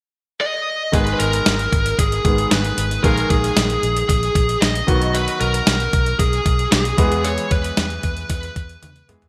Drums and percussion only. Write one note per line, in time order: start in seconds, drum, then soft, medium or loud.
0.93 kick medium
0.93 closed hi-hat medium
1.07 closed hi-hat soft
1.20 closed hi-hat medium
1.33 closed hi-hat medium
1.46 snare loud
1.46 closed hi-hat medium
1.59 closed hi-hat soft
1.73 kick medium
1.73 closed hi-hat medium
1.86 closed hi-hat soft
1.99 kick medium
1.99 closed hi-hat medium
2.12 closed hi-hat soft
2.25 kick medium
2.25 closed hi-hat medium
2.38 closed hi-hat soft
2.51 snare loud
2.51 closed hi-hat medium
2.65 closed hi-hat soft
2.78 closed hi-hat medium
2.91 closed hi-hat soft
3.04 kick medium
3.04 closed hi-hat medium
3.18 closed hi-hat soft
3.30 kick medium
3.30 closed hi-hat medium
3.44 closed hi-hat medium
3.57 snare loud
3.57 closed hi-hat medium
3.70 closed hi-hat soft
3.83 closed hi-hat medium
3.97 closed hi-hat soft
4.09 kick medium
4.09 closed hi-hat medium
4.23 closed hi-hat soft
4.35 kick medium
4.35 closed hi-hat medium
4.49 closed hi-hat soft
4.62 snare loud
4.62 closed hi-hat medium
4.75 closed hi-hat medium
4.88 kick medium
4.88 closed hi-hat medium
5.02 closed hi-hat soft
5.15 closed hi-hat medium
5.28 closed hi-hat soft
5.41 closed hi-hat medium
5.54 closed hi-hat medium
5.67 snare loud
5.67 closed hi-hat medium
5.80 closed hi-hat soft
5.93 kick medium
5.93 closed hi-hat medium
6.06 closed hi-hat soft
6.19 kick medium
6.19 closed hi-hat medium
6.33 closed hi-hat soft
6.46 kick medium
6.46 closed hi-hat medium
6.59 closed hi-hat soft
6.72 snare loud
6.72 closed hi-hat medium
6.85 closed hi-hat medium
6.98 kick medium
6.98 closed hi-hat medium
7.12 closed hi-hat soft
7.25 closed hi-hat medium
7.38 closed hi-hat soft
7.51 kick medium
7.51 closed hi-hat medium
7.64 closed hi-hat medium
7.77 snare loud
7.77 closed hi-hat medium
7.90 closed hi-hat soft
8.03 kick medium
8.03 closed hi-hat medium
8.17 closed hi-hat soft
8.30 kick medium
8.30 closed hi-hat medium
8.43 closed hi-hat soft
8.56 kick medium
8.56 closed hi-hat medium
8.69 closed hi-hat soft
8.82 closed hi-hat medium
8.82 high tom soft
8.96 closed hi-hat soft
9.09 closed hi-hat medium
9.09 mid tom medium
9.22 closed hi-hat soft
9.22 floor tom medium